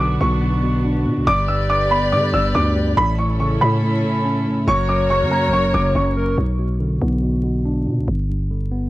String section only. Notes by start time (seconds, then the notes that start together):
Already playing: B3 D4 F#4
1.27 G3 G4 B4 D5
2.97 C#4 E4 A4
4.68 F#3 F#4 A#4 C#5